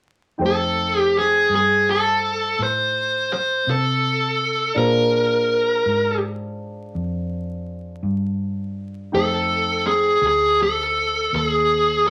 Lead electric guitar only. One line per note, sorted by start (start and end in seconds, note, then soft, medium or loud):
0.46 0.99 A4 medium
0.99 1.18 G4 medium
1.19 1.53 G#4 medium
1.55 1.90 G#4 medium
1.90 2.63 A4 medium
2.63 3.32 C5 medium
3.33 3.70 C5 medium
3.70 4.77 A4 medium
4.77 6.19 A#4 medium
9.15 9.86 A4 medium
9.87 10.24 G#4 medium
10.27 10.59 G#4 medium
10.62 11.35 A4 medium
11.36 11.47 A4 medium
11.47 12.07 G#4 medium